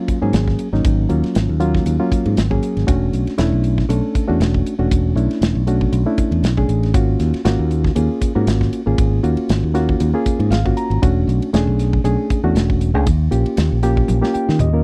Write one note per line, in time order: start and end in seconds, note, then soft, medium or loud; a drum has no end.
0.00 0.18 F#3 medium
0.00 0.18 A#3 medium
0.00 0.18 C#4 medium
0.00 0.18 F4 medium
0.08 muted fingered electric bass stroke soft
0.08 kick medium
0.08 hi-hat pedal medium
0.08 ride medium
0.22 0.32 G#2 medium
0.22 0.67 F#3 medium
0.22 0.67 A#3 medium
0.22 0.68 C#4 medium
0.22 0.68 G#4 medium
0.33 0.54 G#1 loud
0.33 snare loud
0.33 hi-hat pedal medium
0.33 ride medium
0.48 kick medium
0.48 snare soft
0.59 hi-hat pedal medium
0.59 ride medium
0.73 0.82 G#1 medium
0.73 1.06 F#3 medium
0.73 1.06 A#3 medium
0.73 1.07 C#4 medium
0.73 1.07 D#4 medium
0.73 snare soft
0.85 1.05 G#1 medium
0.85 kick loud
0.85 hi-hat pedal medium
0.85 ride medium
1.09 1.22 D#2 medium
1.09 1.56 F#3 medium
1.09 1.56 A#3 medium
1.09 1.56 C#4 medium
1.09 1.56 F4 medium
1.09 hi-hat pedal medium
1.09 ride medium
1.24 muted fingered electric bass stroke soft
1.24 snare soft
1.24 ride medium
1.35 1.47 G#1 medium
1.35 snare loud
1.35 hi-hat pedal medium
1.35 ride medium
1.49 1.79 D#2 medium
1.60 1.95 F#3 medium
1.60 1.95 A#3 medium
1.60 1.96 C#4 medium
1.60 1.96 F4 loud
1.60 hi-hat pedal medium
1.60 ride medium
1.75 kick medium
1.75 snare soft
1.86 1.97 D#2 medium
1.86 hi-hat pedal medium
1.86 ride medium
2.00 2.45 F#3 medium
2.00 2.45 A#3 medium
2.00 2.45 C#4 medium
2.00 2.45 F4 medium
2.11 muted fingered electric bass stroke soft
2.11 kick medium
2.11 hi-hat pedal medium
2.11 ride medium
2.26 2.35 G#2 medium
2.26 ride medium
2.37 2.58 G#1 medium
2.37 snare loud
2.37 hi-hat pedal medium
2.37 ride medium
2.50 2.84 F#3 medium
2.50 2.84 A#3 medium
2.50 2.84 C#4 medium
2.50 2.84 G#4 medium
2.50 kick medium
2.63 hi-hat pedal medium
2.63 ride medium
2.77 2.86 G#1 medium
2.77 snare soft
2.77 ride medium
2.87 3.09 E1 medium
2.87 3.33 A3 medium
2.87 3.33 C#4 medium
2.87 3.34 D4 medium
2.87 3.34 F#4 medium
2.87 kick loud
2.87 hi-hat pedal medium
2.87 ride medium
3.13 3.24 B1 medium
3.13 hi-hat pedal medium
3.13 ride medium
3.27 snare soft
3.27 ride medium
3.38 3.50 E1 medium
3.38 3.84 A3 medium
3.38 3.84 C#4 medium
3.38 3.84 D4 medium
3.38 3.84 E4 loud
3.38 snare loud
3.38 hi-hat pedal medium
3.38 ride medium
3.52 3.82 B1 medium
3.64 hi-hat pedal medium
3.64 ride medium
3.78 kick medium
3.78 snare soft
3.89 4.00 B1 medium
3.89 4.24 A3 medium
3.89 4.24 C#4 medium
3.89 4.24 D4 medium
3.89 4.25 A4 medium
3.89 hi-hat pedal medium
3.89 ride medium
4.15 muted fingered electric bass stroke soft
4.15 kick medium
4.15 hi-hat pedal medium
4.15 ride medium
4.28 4.38 E2 medium
4.28 4.73 A3 medium
4.28 4.73 C#4 medium
4.28 4.73 D4 medium
4.28 4.74 F#4 medium
4.40 4.61 E1 loud
4.40 snare loud
4.40 hi-hat pedal medium
4.40 ride medium
4.54 kick medium
4.66 hi-hat pedal medium
4.66 ride medium
4.79 4.88 E1 medium
4.79 5.12 A3 medium
4.79 5.12 C#4 medium
4.79 5.13 D4 medium
4.79 5.13 F#4 medium
4.91 5.12 E1 medium
4.91 kick loud
4.91 hi-hat pedal medium
4.91 ride medium
5.15 5.27 B1 medium
5.15 5.62 A3 medium
5.15 5.62 C#4 medium
5.15 5.62 D4 medium
5.15 5.62 E4 medium
5.15 hi-hat pedal medium
5.15 ride medium
5.31 snare soft
5.31 ride medium
5.41 5.53 E1 medium
5.41 snare loud
5.41 hi-hat pedal medium
5.41 ride medium
5.55 5.86 B1 medium
5.67 6.02 A3 medium
5.67 6.02 C#4 medium
5.67 6.02 D4 medium
5.67 6.03 F#4 medium
5.67 hi-hat pedal medium
5.67 ride medium
5.81 kick medium
5.93 6.04 B1 loud
5.93 hi-hat pedal medium
5.93 ride medium
6.06 6.52 A3 medium
6.06 6.52 C#4 medium
6.06 6.52 D4 medium
6.06 6.52 E4 medium
6.18 muted fingered electric bass stroke soft
6.18 kick medium
6.18 hi-hat pedal medium
6.18 ride medium
6.31 6.41 E2 medium
6.31 ride medium
6.43 6.66 B1 medium
6.43 snare loud
6.43 hi-hat pedal medium
6.43 ride medium
6.57 6.91 A3 medium
6.57 6.91 C#4 medium
6.57 6.91 D4 medium
6.57 6.91 G#4 medium
6.57 kick medium
6.68 6.92 A1 medium
6.68 hi-hat pedal medium
6.68 ride medium
6.83 snare soft
6.83 ride medium
6.94 7.15 G#1 medium
6.94 7.40 A#3 medium
6.94 7.41 C#4 medium
6.94 7.41 F4 medium
6.94 7.41 F#4 medium
6.94 kick loud
6.94 hi-hat pedal medium
6.94 ride medium
7.20 7.31 D#2 medium
7.20 snare soft
7.20 hi-hat pedal medium
7.20 ride medium
7.34 muted fingered electric bass stroke soft
7.34 snare soft
7.34 ride medium
7.45 7.56 G#1 medium
7.45 7.91 A#3 medium
7.45 7.91 C#4 medium
7.45 7.91 F4 medium
7.45 7.92 F#4 loud
7.45 snare loud
7.45 hi-hat pedal medium
7.45 ride medium
7.59 7.89 D#2 medium
7.71 hi-hat pedal medium
7.71 ride medium
7.84 kick medium
7.84 snare soft
7.95 8.08 D#2 medium
7.95 8.31 A#3 medium
7.95 8.31 C#4 medium
7.95 8.31 F4 medium
7.95 8.31 G#4 medium
7.95 hi-hat pedal medium
7.95 ride medium
8.21 muted fingered electric bass stroke soft
8.21 kick medium
8.21 hi-hat pedal medium
8.21 ride medium
8.35 8.45 G#2 medium
8.35 8.81 A#3 medium
8.35 8.81 C#4 medium
8.35 8.81 F4 medium
8.35 8.81 F#4 medium
8.47 8.68 G#1 medium
8.47 snare loud
8.47 hi-hat pedal medium
8.47 ride medium
8.61 kick medium
8.61 snare soft
8.73 hi-hat pedal medium
8.73 ride medium
8.86 8.96 G#1 medium
8.86 9.20 A#3 medium
8.86 9.20 C#4 medium
8.86 9.20 F4 medium
8.86 9.20 G#4 medium
8.98 9.19 G#1 medium
8.98 kick loud
8.98 hi-hat pedal medium
8.98 ride medium
9.23 9.35 D#2 medium
9.23 9.70 A#3 medium
9.23 9.70 C#4 medium
9.23 9.70 F4 medium
9.23 9.70 F#4 medium
9.23 hi-hat pedal medium
9.23 ride medium
9.37 muted fingered electric bass stroke soft
9.37 ride medium
9.49 9.61 G#1 medium
9.49 snare loud
9.49 hi-hat pedal medium
9.49 ride medium
9.63 9.93 D#2 medium
9.74 10.10 A#3 medium
9.74 10.10 C#4 medium
9.74 10.10 F4 medium
9.74 10.10 F#4 loud
9.74 snare soft
9.74 hi-hat pedal medium
9.74 ride medium
9.89 kick medium
10.00 10.12 D#2 medium
10.00 hi-hat pedal medium
10.00 ride medium
10.14 10.59 A#3 medium
10.14 10.60 C#4 medium
10.14 10.60 F4 medium
10.14 10.60 G#4 medium
10.26 muted fingered electric bass stroke soft
10.26 kick medium
10.26 hi-hat pedal medium
10.26 ride medium
10.40 10.49 G#2 medium
10.40 ride medium
10.50 10.72 G#1 loud
10.50 10.75 F5 medium
10.50 snare loud
10.50 hi-hat pedal medium
10.50 ride medium
10.65 10.99 A#3 medium
10.65 10.99 C#4 medium
10.65 10.99 F4 medium
10.65 10.99 F#4 medium
10.65 kick medium
10.77 11.01 A#5 medium
10.77 hi-hat pedal medium
10.77 ride medium
10.90 11.00 G#1 medium
10.90 ride medium
11.02 11.23 E1 medium
11.02 11.49 A3 medium
11.02 11.49 C#4 medium
11.02 11.49 D4 medium
11.02 11.49 F#4 medium
11.02 kick loud
11.02 hi-hat pedal medium
11.02 ride medium
11.27 11.39 B1 medium
11.27 hi-hat pedal medium
11.27 ride medium
11.42 muted fingered electric bass stroke soft
11.42 ride medium
11.53 11.65 E1 medium
11.53 12.00 A3 medium
11.53 12.00 C#4 medium
11.53 12.00 D4 medium
11.53 12.00 G#4 medium
11.53 snare loud
11.53 hi-hat pedal medium
11.53 ride medium
11.67 11.98 B1 medium
11.79 snare soft
11.79 hi-hat pedal medium
11.79 ride medium
11.93 kick medium
12.04 12.16 B1 loud
12.04 12.40 A3 medium
12.04 12.40 C#4 medium
12.04 12.40 D4 medium
12.04 12.40 G#4 medium
12.04 hi-hat pedal medium
12.04 ride medium
12.30 muted fingered electric bass stroke soft
12.30 kick medium
12.30 hi-hat pedal medium
12.30 ride medium
12.44 12.53 E2 medium
12.44 12.89 A3 medium
12.44 12.89 C#4 medium
12.44 12.89 D4 medium
12.44 12.90 F#4 loud
12.55 12.95 E1 medium
12.55 snare loud
12.55 hi-hat pedal medium
12.55 ride medium
12.70 kick medium
12.81 hi-hat pedal medium
12.81 ride medium
12.94 13.04 C#2 medium
12.94 13.06 A3 medium
12.94 13.06 C#4 medium
12.94 13.06 D4 medium
12.94 13.06 G#4 medium
13.06 13.28 D#2 medium
13.06 kick loud
13.06 hi-hat pedal medium
13.06 ride medium
13.31 13.43 A#1 medium
13.31 13.78 A#3 medium
13.31 13.78 C#4 medium
13.31 13.78 F4 medium
13.31 13.78 G4 medium
13.31 hi-hat pedal medium
13.31 ride medium
13.46 ride medium
13.57 13.69 D#2 medium
13.57 snare loud
13.57 hi-hat pedal medium
13.57 ride medium
13.72 14.02 A#1 medium
13.83 14.18 A#3 medium
13.83 14.18 C#4 medium
13.83 14.19 F4 medium
13.83 14.19 G4 loud
13.83 snare soft
13.83 hi-hat pedal medium
13.83 ride medium
13.97 kick medium
14.08 14.21 A#1 medium
14.08 hi-hat pedal medium
14.08 high tom medium
14.22 14.68 A#3 medium
14.22 14.68 C#4 medium
14.22 14.68 F4 medium
14.22 14.68 G4 medium
14.22 snare medium
14.34 14.58 G5 medium
14.34 muted fingered electric bass stroke soft
14.34 hi-hat pedal medium
14.49 14.58 D#3 medium
14.49 snare medium
14.59 14.84 D#2 medium
14.59 14.84 D#5 medium
14.59 hi-hat pedal medium
14.59 mid tom medium
14.73 14.84 A#3 medium
14.73 14.84 C#4 medium
14.73 14.84 F4 medium
14.73 14.84 A#4 medium